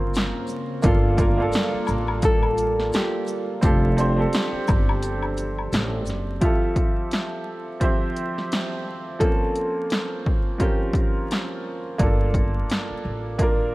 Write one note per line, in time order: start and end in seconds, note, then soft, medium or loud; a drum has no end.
0.00 0.31 G1 medium
0.00 0.81 C#3 medium
0.00 0.80 A#3 medium
0.00 0.85 C4 medium
0.00 0.85 C#4 medium
0.00 0.85 F4 medium
0.00 0.85 A#4 loud
0.00 0.80 C5 loud
0.00 0.85 C5 loud
0.14 snare loud
0.14 closed hi-hat medium
0.14 maracas medium
0.47 maracas soft
0.47 shaker soft
0.82 1.45 G1 loud
0.82 3.60 G3 medium
0.82 1.13 A#3 medium
0.82 3.60 A#3 loud
0.82 1.14 D4 medium
0.82 3.60 F4 medium
0.82 1.15 F4 medium
0.82 2.24 F4 medium
0.82 6.38 A4 medium
0.82 1.15 A4 medium
0.82 kick loud
0.82 closed hi-hat medium
0.82 maracas medium
1.17 1.35 A#3 medium
1.17 1.35 D4 medium
1.17 1.36 F4 medium
1.17 1.37 A#4 medium
1.17 kick medium
1.17 closed hi-hat soft
1.17 maracas soft
1.17 shaker soft
1.37 2.55 A#3 medium
1.37 2.56 D4 medium
1.37 2.56 F4 medium
1.41 2.57 A4 medium
1.52 snare loud
1.52 closed hi-hat medium
1.52 maracas medium
1.74 muted upright bass stroke soft
1.87 2.89 A1 medium
1.87 high woodblock medium
1.87 maracas medium
1.87 shaker soft
2.08 high woodblock medium
2.22 2.94 A4 loud
2.22 kick loud
2.22 closed hi-hat medium
2.22 maracas medium
2.43 high woodblock medium
2.57 closed hi-hat soft
2.57 maracas soft
2.57 shaker soft
2.80 snare soft
2.93 3.63 G4 loud
2.93 snare loud
2.93 closed hi-hat medium
2.93 maracas medium
3.27 maracas soft
3.27 shaker soft
3.61 4.24 F1 loud
3.61 6.39 F3 medium
3.61 3.92 C4 medium
3.61 3.93 D4 medium
3.61 6.39 D4 medium
3.61 5.68 F4 medium
3.61 6.39 G4 medium
3.61 3.94 G4 medium
3.61 kick loud
3.61 closed hi-hat medium
3.61 maracas medium
3.65 3.94 A4 medium
3.97 4.14 C4 medium
3.97 4.15 D4 medium
3.97 4.15 G4 medium
3.97 4.16 C5 medium
3.97 closed hi-hat soft
3.97 shaker soft
3.97 maracas soft
4.16 5.34 C4 medium
4.16 5.35 D4 medium
4.16 5.35 G4 medium
4.16 5.36 A4 medium
4.33 snare loud
4.33 closed hi-hat medium
4.33 maracas medium
4.53 muted upright bass stroke soft
4.68 5.69 G1 medium
4.68 kick loud
4.68 high woodblock medium
4.68 shaker soft
4.68 maracas soft
4.89 high woodblock medium
5.03 closed hi-hat medium
5.03 maracas medium
5.22 high woodblock medium
5.37 closed hi-hat soft
5.37 maracas soft
5.37 shaker soft
5.58 high woodblock medium
5.72 6.07 A1 medium
5.72 snare loud
5.72 closed hi-hat medium
5.72 maracas medium
6.05 6.37 F#1 loud
6.05 maracas soft
6.05 shaker medium
6.10 snare soft
6.41 7.63 F3 medium
6.41 7.63 C4 medium
6.41 9.29 F4 medium
6.41 7.64 G4 medium
6.41 7.64 E5 medium
6.41 kick loud
6.41 closed hi-hat medium
6.45 7.65 A4 medium
6.76 kick medium
6.76 closed hi-hat soft
7.11 snare medium
7.11 closed hi-hat medium
7.80 9.02 F3 medium
7.80 9.02 C4 medium
7.80 9.03 G4 medium
7.80 9.03 E5 medium
7.80 kick medium
7.80 closed hi-hat medium
7.84 9.04 C5 medium
8.17 closed hi-hat soft
8.38 snare soft
8.52 snare loud
8.52 closed hi-hat medium
9.19 10.41 F3 medium
9.19 10.43 A#3 medium
9.19 10.42 C4 medium
9.19 10.42 C#4 medium
9.19 10.43 F4 medium
9.19 10.60 A4 loud
9.19 kick loud
9.19 closed hi-hat medium
9.55 closed hi-hat soft
9.90 snare loud
9.90 closed hi-hat soft
10.26 kick medium
10.58 11.81 F3 medium
10.58 11.81 C4 medium
10.58 11.82 C#4 medium
10.58 11.82 F4 medium
10.58 11.61 G4 medium
10.58 kick medium
10.58 closed hi-hat medium
10.62 11.83 A#4 medium
10.93 kick medium
10.93 closed hi-hat soft
11.31 snare loud
11.31 closed hi-hat medium
11.98 12.61 G1 loud
11.98 13.20 A#3 medium
11.98 13.21 D4 medium
11.98 13.22 F4 medium
11.98 13.22 A4 medium
11.98 kick loud
11.98 closed hi-hat medium
12.34 kick medium
12.34 closed hi-hat soft
12.70 snare loud
12.70 closed hi-hat medium
12.90 muted upright bass stroke soft
13.05 13.75 A1 medium
13.38 13.75 A#3 medium
13.38 13.75 D4 medium
13.38 13.75 F4 medium
13.38 kick medium
13.38 closed hi-hat medium
13.43 13.75 A#4 medium